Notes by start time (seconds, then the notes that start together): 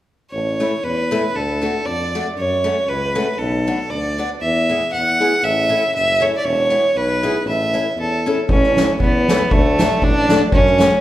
0.31 A1 C#5
0.60 A3 C#4 E4
0.83 E2 B4
1.11 A3 C#4 E4
1.30 D2 B4
1.36 A4
1.62 A3 D4 F#4
1.85 F2 D5
2.15 A3 D4 F#4
2.36 F#2 C#5
2.64 A3 C#4 F#4
2.88 C#2 B4
3.15 A3 C#4 F#4
3.33 B4
3.38 B1 A4
3.67 B3 D4 F#4
3.90 D2 D5
4.18 B3 D4 F#4
4.41 E2 E5
4.69 B3 E4 G#4
4.93 E2 F#5
5.20 B3 E4 G#4
5.43 A1 E5
5.69 C#4 E4 A4
5.93 F#1 E5
6.20 C#4 E4 A4 C#5
6.37 D5
6.43 E1 C#5
6.70 B3 E4 G#4
6.94 B1 B4
7.23 B3 E4 G#4
7.45 A1 E5
7.73 C#4 E4 A4
7.96 E2
8.00 A4
8.26 C#4 E4 A4
8.49 A1 C#4, kick
8.63 snare
8.77 A3 C#4 E4, snare, hi-hat pedal
9.00 E2 B3, kick
9.28 A3 C#4 E4, snare, hi-hat pedal
9.51 D2 A3, kick
9.79 F#3 A3 D4, snare, hi-hat pedal
9.91 snare
10.02 A1 D4, kick
10.29 F#3 A3 D4, snare, hi-hat pedal
10.52 F#2 C#4, kick
10.66 snare
10.78 F#3 A3 C#4, snare, hi-hat pedal